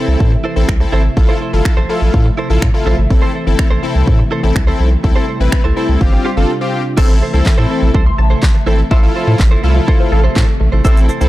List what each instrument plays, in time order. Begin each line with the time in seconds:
Already playing: string machine C3 E3 A3 E5, analog polysynth C4 E4 A4
0.08 sub bass C2, muted clean electric guitar stroke
0.20 sub bass A2, muted clean electric guitar stroke, kick
0.32 muted clean electric guitar stroke
0.44 clean electric guitar E4 A4 C5
0.56 sub bass A1, analog polysynth C4 E4 A4, muted clean electric guitar stroke
0.69 sub bass C2, finger snap, kick
0.80 analog polysynth C4 E4 A4, muted clean electric guitar stroke
0.92 sub bass G#1, clean electric guitar E4 A4 C5
1.05 muted clean electric guitar stroke
1.17 sub bass A1, string machine C3 F3, analog polysynth E4 F4 A4, muted clean electric guitar stroke, kick
1.29 clean electric guitar E4 A4 C5
1.41 clean electric guitar E4 A4 C5
1.53 sub bass G1, analog polysynth E4 F4 A4, muted clean electric guitar stroke
1.65 finger snap, muted clean electric guitar stroke, kick
1.77 sub bass A1, clean electric guitar E4 A4 C5
1.89 clean electric guitar E4 A4 C5, analog polysynth E4 F4 A4
2.01 sub bass A1, muted clean electric guitar stroke
2.13 sub bass A2, muted clean electric guitar stroke, kick
2.26 muted clean electric guitar stroke
2.38 clean electric guitar E4 A4 C5
2.50 sub bass A1, analog polysynth E4 F4 A4, muted clean electric guitar stroke
2.62 sub bass A2, finger snap, kick
2.74 analog polysynth E4 F4 A4, muted clean electric guitar stroke
2.86 sub bass A1, clean electric guitar E4 A4 C5
2.98 sub bass G#1, muted clean electric guitar stroke
3.10 sub bass A1, string machine E3, analog polysynth C4 E4 A4, muted clean electric guitar stroke, kick
3.22 clean electric guitar E4 A4 C5
3.34 clean electric guitar E4 A4 C5
3.46 sub bass G1, analog polysynth C4 E4 A4, muted clean electric guitar stroke
3.59 finger snap, muted clean electric guitar stroke, kick
3.70 sub bass A1, clean electric guitar E4 A4 C5
3.83 analog polysynth C4 E4 A4, clean electric guitar E4 A4 C5
3.95 sub bass C2, muted clean electric guitar stroke
4.07 sub bass A2, muted clean electric guitar stroke, kick
4.19 muted clean electric guitar stroke
4.31 clean electric guitar E4 A4 C5
4.43 sub bass A1, analog polysynth C4 E4 A4, muted clean electric guitar stroke
4.55 sub bass C2, finger snap, muted clean electric guitar stroke, kick
4.67 analog polysynth C4 E4 A4, clean electric guitar E4 A4 C5
4.79 sub bass B1, muted clean electric guitar stroke
4.91 muted clean electric guitar stroke
5.04 sub bass C2, string machine G3 E4, analog polysynth C4 E4 A4, muted clean electric guitar stroke, kick
5.16 clean electric guitar E4 A4 C5
5.28 clean electric guitar E4 A4 C5
5.40 sub bass A1, analog polysynth C4 E4 B4, muted clean electric guitar stroke
5.52 finger snap, muted clean electric guitar stroke, kick
5.64 sub bass C2, clean electric guitar E4 A4 C5
5.76 analog polysynth C4 E4 A4, clean electric guitar E4 A4 C5
5.89 sub bass C2
6.01 sub bass G1, string machine C3 D4 F4, analog polysynth C4 F4 G4, muted clean electric guitar stroke, kick
6.13 muted clean electric guitar stroke
6.25 clean electric guitar F4 G4 C5
6.37 sub bass G1, analog polysynth C4 F4 A4, muted clean electric guitar stroke
6.61 analog polysynth C4 F4 G4
6.97 sub bass A1, string machine C3 E3 A3 E5, analog polysynth C4 E4 A4, clean electric guitar E4 A4 C5, synth arpeggio sound E6, kick, crash
7.21 clean electric guitar E4 A4 C5
7.33 sub bass C2, analog polysynth C4 E4 A4, clean electric guitar E4 A4 C5
7.46 sub bass A2, muted clean electric guitar stroke, kick, snare, clap
7.58 sub bass A2, clean electric guitar E4 A4 C5
7.70 clean electric guitar E4 A4 C5
7.82 sub bass A1, synth arpeggio sound E3, muted clean electric guitar stroke
7.94 sub bass C2, clean electric guitar E4 A4 C5, kick
8.06 synth arpeggio sound C6, muted clean electric guitar stroke
8.18 sub bass A1, synth arpeggio sound A5, muted clean electric guitar stroke
8.30 clean electric guitar E4 A4 C5
8.43 kick, snare, clap
8.55 muted clean electric guitar stroke
8.67 sub bass G#1, synth arpeggio sound A3, analog polysynth C4 E4 A4, clean electric guitar E4 A4 C5
8.79 muted clean electric guitar stroke
8.91 sub bass A1, string machine C3 F3 A3, clean electric guitar E4 A4 C5, analog polysynth E4 F4 A4, synth arpeggio sound E5, kick
9.03 analog polysynth E4 F4 A4
9.15 clean electric guitar E4 A4 C5
9.27 sub bass A2, clean electric guitar E4 A4 C5
9.40 sub bass A1, kick, snare, clap
9.51 clean electric guitar E4 A4 C5
9.63 sub bass C2, clean electric guitar E4 A4 C5, analog polysynth E4 F4 A4
9.75 synth arpeggio sound F3, muted clean electric guitar stroke
9.87 clean electric guitar E4 A4 C5, kick
9.99 synth arpeggio sound C5, muted clean electric guitar stroke
10.12 sub bass A1, synth arpeggio sound A4, muted clean electric guitar stroke
10.24 clean electric guitar E4 A4 C5
10.36 sub bass A2, clean electric guitar E4 A4 C5, kick, snare, clap
10.48 muted clean electric guitar stroke
10.60 sub bass A1, synth arpeggio sound A3, muted clean electric guitar stroke
10.72 sub bass G#1, clean electric guitar E4 A4 C5
10.84 sub bass A1, string machine E3, analog polysynth C4 E4 A4, clean electric guitar E4 A4 C5, synth arpeggio sound E6, kick, shaker
10.97 shaker
11.08 clean electric guitar E4 A4 C5, shaker
11.21 sub bass C2, analog polysynth C4 E4 A4, clean electric guitar E4 A4 C5, shaker